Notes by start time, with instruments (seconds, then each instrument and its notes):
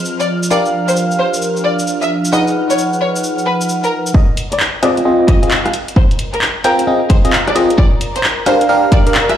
Already playing: analog synth pad F3 F6, fm electric piano C4 F4 G#4 D#5
0.05 shaker
0.20 violin section D5, shaker
0.43 shaker
0.51 fm electric piano D4 G4 A#4 F5, violin section D5, shaker
0.66 shaker
0.88 violin section C5, shaker
0.96 shaker
1.11 shaker
1.19 violin section C5
1.34 shaker
1.42 shaker
1.57 shaker
1.64 violin section D5
1.79 shaker
1.87 shaker
2.02 violin section E5, shaker
2.25 shaker
2.32 fm electric piano D#4 G#4 B4 F#5, violin section D#5, shaker
2.47 shaker
2.70 violin section C#5, shaker
2.78 shaker
2.93 shaker
3.01 violin section C#5
3.16 shaker
3.24 shaker
3.38 shaker
3.46 violin section B4
3.61 shaker
3.69 shaker
3.84 violin section A#4, shaker
4.07 shaker
4.14 fm bass F1, analog synth pad A#4 A#5, violin section D#5, kick
4.37 open hi-hat
4.52 fm bass F1, violin section D5, closed hi-hat
4.60 clap
4.82 fm electric piano C4 F4 G#4 D#5, violin section D5, cross-stick, open hi-hat
4.97 fm bass F1, closed hi-hat
5.05 fm electric piano C4 F4 G#4 D#5
5.28 fm bass F2, violin section D#5, kick, open hi-hat
5.43 fm electric piano C4 F4 G#4 D#5, closed hi-hat
5.51 clap
5.65 fm bass C2, violin section F5, cross-stick, closed hi-hat
5.74 open hi-hat
5.88 closed hi-hat
5.96 fm bass F1, violin section C5, kick
6.11 open hi-hat
6.19 open hi-hat
6.33 fm bass F1, violin section A#4, closed hi-hat
6.41 clap
6.64 fm electric piano C4 F4 G#4 G5, violin section A#4, open hi-hat
6.79 fm bass F1, closed hi-hat
6.87 fm electric piano C4 F4 G#4 D#5
7.10 fm bass F2, violin section C5, kick, open hi-hat
7.25 fm electric piano C4 F4 G#4 D#5, closed hi-hat
7.33 clap
7.47 fm bass C2, violin section D5, cross-stick, closed hi-hat
7.55 fm electric piano C4 F4 G#4 D#5, open hi-hat
7.70 closed hi-hat
7.78 fm bass G1, violin section D5, kick
8.01 open hi-hat
8.16 fm bass G1, violin section C5, closed hi-hat
8.24 clap
8.46 fm electric piano D4 G4 A#4 F5, violin section C5, cross-stick, open hi-hat
8.61 fm bass G1, closed hi-hat
8.69 fm electric piano D4 G4 A#4 F5
8.92 fm bass G2, violin section D5, kick, open hi-hat
9.07 fm electric piano D4 G4 A#4 F5, closed hi-hat
9.15 clap
9.29 fm bass D2, violin section E5, cross-stick, closed hi-hat